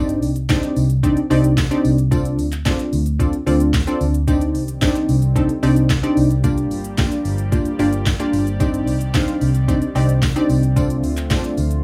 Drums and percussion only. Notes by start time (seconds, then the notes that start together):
0.09 closed hi-hat, shaker
0.23 open hi-hat, tambourine, shaker
0.36 closed hi-hat, shaker
0.49 kick, snare, clap, closed hi-hat, tambourine, shaker
0.63 closed hi-hat, shaker
0.76 open hi-hat, tambourine, shaker
0.90 closed hi-hat, shaker
1.04 kick, closed hi-hat, shaker
1.17 closed hi-hat, shaker
1.31 open hi-hat, tambourine, shaker
1.44 closed hi-hat, shaker
1.57 kick, snare, clap, closed hi-hat, tambourine, shaker
1.71 closed hi-hat, shaker
1.85 open hi-hat, tambourine, shaker
1.98 closed hi-hat, shaker
2.12 kick, closed hi-hat, tambourine, shaker
2.25 closed hi-hat, shaker
2.39 open hi-hat, tambourine, shaker
2.52 clap, closed hi-hat, shaker
2.65 kick, snare, clap, closed hi-hat, tambourine, shaker
2.79 closed hi-hat, shaker
2.93 open hi-hat, tambourine, shaker
3.06 closed hi-hat, shaker
3.20 kick, closed hi-hat, tambourine, shaker
3.33 closed hi-hat, shaker
3.47 open hi-hat, tambourine, shaker
3.60 closed hi-hat, shaker
3.74 kick, snare, clap, closed hi-hat, tambourine, shaker
3.87 closed hi-hat, shaker
4.01 open hi-hat, tambourine, shaker
4.14 closed hi-hat, shaker
4.28 kick, closed hi-hat, tambourine, shaker
4.41 closed hi-hat, shaker
4.55 open hi-hat, shaker
4.68 closed hi-hat, shaker
4.81 kick, snare, clap, closed hi-hat, tambourine, shaker
4.95 closed hi-hat, shaker
5.09 open hi-hat, tambourine, shaker
5.22 closed hi-hat, shaker
5.36 kick, closed hi-hat, shaker
5.49 closed hi-hat, shaker
5.63 open hi-hat, tambourine, shaker
5.76 closed hi-hat, shaker
5.90 kick, snare, clap, closed hi-hat, tambourine, shaker
6.03 closed hi-hat, shaker
6.17 open hi-hat, tambourine, shaker
6.31 closed hi-hat, shaker
6.44 kick, closed hi-hat, tambourine, shaker
6.58 closed hi-hat, shaker
6.71 open hi-hat, tambourine, shaker
6.84 closed hi-hat, shaker
6.98 kick, snare, clap, closed hi-hat, tambourine, shaker
7.12 closed hi-hat, shaker
7.25 open hi-hat, tambourine, shaker
7.38 closed hi-hat, shaker
7.52 kick, closed hi-hat, tambourine, shaker
7.65 closed hi-hat, shaker
7.79 open hi-hat, tambourine, shaker
7.93 closed hi-hat, shaker
8.06 kick, snare, clap, closed hi-hat, tambourine, shaker
8.20 closed hi-hat, shaker
8.33 open hi-hat, tambourine, shaker
8.47 closed hi-hat, shaker
8.60 kick, closed hi-hat, tambourine, shaker
8.74 closed hi-hat, shaker
8.87 open hi-hat, tambourine, shaker
9.01 closed hi-hat, shaker
9.14 kick, snare, clap, closed hi-hat, tambourine, shaker
9.28 closed hi-hat, shaker
9.41 open hi-hat, tambourine, shaker
9.55 closed hi-hat, shaker
9.68 kick, closed hi-hat, tambourine, shaker
9.82 closed hi-hat, shaker
9.96 open hi-hat, tambourine, shaker
10.09 closed hi-hat, shaker
10.22 kick, snare, clap, closed hi-hat, tambourine, shaker
10.36 closed hi-hat, shaker
10.49 open hi-hat, tambourine, shaker
10.63 closed hi-hat, shaker
10.77 kick, closed hi-hat, tambourine, shaker
10.90 closed hi-hat, shaker
11.04 open hi-hat, tambourine, shaker
11.17 clap, closed hi-hat, shaker
11.30 kick, snare, clap, closed hi-hat, tambourine, shaker
11.44 closed hi-hat, shaker
11.57 open hi-hat, tambourine, shaker
11.71 closed hi-hat, shaker